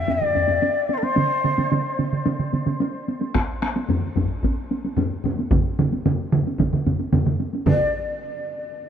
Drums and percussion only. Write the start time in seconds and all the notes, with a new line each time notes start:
0.07 taiko low-mid, taiko high
0.21 taiko low-mid
0.35 taiko low-mid, taiko high
0.48 taiko low-mid, taiko high
0.62 taiko high
0.89 taiko high
1.03 taiko high
1.16 taiko mid, taiko high
1.44 taiko mid, taiko high
1.58 taiko mid, taiko high
1.72 taiko mid, taiko high
1.99 taiko mid, taiko high
2.13 taiko mid
2.26 taiko mid, taiko high
2.39 taiko mid
2.53 taiko mid, taiko high
2.66 taiko mid, taiko high
2.80 taiko high
3.08 taiko high
3.21 taiko high
3.35 taiko rim, taiko, taiko high
3.62 taiko rim, taiko high
3.76 taiko high
3.89 taiko low-mid, taiko high
4.16 taiko, taiko low-mid, taiko high
4.43 taiko, taiko high
4.71 taiko high
4.85 taiko high
4.97 taiko low-mid, taiko high
5.24 taiko low-mid, taiko high
5.39 taiko high
5.51 taiko, taiko low-mid, taiko mid, taiko high
5.79 taiko low-mid, taiko mid, taiko high
5.92 taiko high
6.06 taiko low-mid, taiko mid, taiko high
6.32 taiko low-mid, taiko mid
6.47 taiko high
6.58 taiko, taiko low-mid, taiko mid, taiko high
6.73 taiko low-mid, taiko mid
6.86 taiko low-mid, taiko mid, taiko high
6.99 taiko high
7.13 taiko low-mid, taiko mid, taiko high
7.26 taiko low-mid, taiko mid
7.40 taiko high
7.53 taiko high
7.66 taiko, taiko low-mid, taiko mid, taiko high